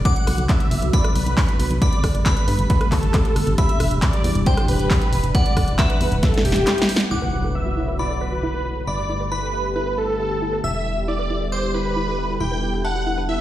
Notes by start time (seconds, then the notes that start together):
Already playing: D3 B3
0.05 F#3 F#4 B4 F#5 D6, kick, closed hi-hat
0.16 closed hi-hat
0.27 B1, cross-stick, open hi-hat
0.38 B1, closed hi-hat
0.49 E5, kick, clap, closed hi-hat
0.60 closed hi-hat
0.71 F#1, open hi-hat
0.82 B1, closed hi-hat
0.93 D5 B5, kick, closed hi-hat
1.04 cross-stick, closed hi-hat
1.15 B1 B4, open hi-hat
1.27 B1, closed hi-hat
1.38 kick, clap, open hi-hat
1.49 closed hi-hat
1.60 B1, open hi-hat
1.71 B1, closed hi-hat
1.82 G3 A3 G4 D5 B5, kick, closed hi-hat
1.93 closed hi-hat
2.04 G1, kick, cross-stick, open hi-hat
2.15 G1, closed hi-hat
2.26 B4 B5, kick, clap, closed hi-hat
2.37 closed hi-hat
2.48 G2, open hi-hat
2.59 G1, closed hi-hat
2.70 B4, kick, closed hi-hat
2.81 cross-stick, closed hi-hat
2.92 G1 A4, kick, clap, open hi-hat
3.03 G1, closed hi-hat
3.14 kick, clap, closed hi-hat
3.25 closed hi-hat
3.36 G1, cross-stick, open hi-hat
3.47 G1, closed hi-hat
3.58 E3 D4 E5 B5, kick, closed hi-hat
3.69 closed hi-hat
3.80 E1, cross-stick, open hi-hat
3.91 E1, closed hi-hat
4.02 D5, kick, clap, closed hi-hat
4.13 closed hi-hat
4.24 E2, open hi-hat
4.35 E1, closed hi-hat
4.46 C5 G5, kick, closed hi-hat
4.57 cross-stick, closed hi-hat
4.68 E1 B4, open hi-hat
4.79 E1, closed hi-hat
4.91 kick, clap, open hi-hat
5.02 closed hi-hat
5.13 E1, open hi-hat
5.24 E1, closed hi-hat
5.35 D5 F#5, kick, closed hi-hat
5.46 closed hi-hat
5.57 E1, kick, cross-stick, open hi-hat
5.68 E1, closed hi-hat
5.79 B4 E5, kick, clap, closed hi-hat
5.90 closed hi-hat
6.01 E2, open hi-hat
6.12 E1, closed hi-hat
6.23 A4, kick, snare, closed hi-hat
6.34 snare, closed hi-hat
6.45 E1 G4, open hi-hat
6.52 E1, snare, closed hi-hat
6.67 snare, clap, closed hi-hat
6.78 snare, closed hi-hat
6.89 open hi-hat
6.96 snare, closed hi-hat
7.11 B1 D3 F#3 B3 E4 F#4 B4 F#5 D6, impact
7.22 B4
7.33 E4
7.44 A4
7.55 E5
7.66 F#4
7.77 E4
7.88 B4
7.99 E4 D5 B5
8.10 A4
8.21 B4 E5
8.32 F#4
8.43 E4
8.54 B4
8.65 E4
8.76 A4
8.87 G1 G3 A3 B3 G4 D5 E5 B5
8.98 G4
9.09 E4
9.20 B4
9.32 E4 B4 B5
9.43 A4
9.54 E5
9.65 G4
9.76 E4 B4
9.87 B4
9.98 E4 A4
10.09 A4
10.20 E5
10.31 G4
10.42 E4
10.53 B4
10.64 E1 E4 E5 E6
10.75 A4
10.86 E5
10.97 G4
11.08 E4 D5
11.19 B4
11.30 E4
11.41 A4
11.52 C5 E5 D6
11.63 G4
11.74 E4 B4
11.85 B4
11.96 E4
12.07 A4
12.18 E5
12.30 G4
12.40 E1 E4 G5 B5
12.52 B4
12.63 E4
12.74 A4
12.85 E5 F#5 A5
12.96 G4
13.07 E4
13.18 B4
13.29 E4 E5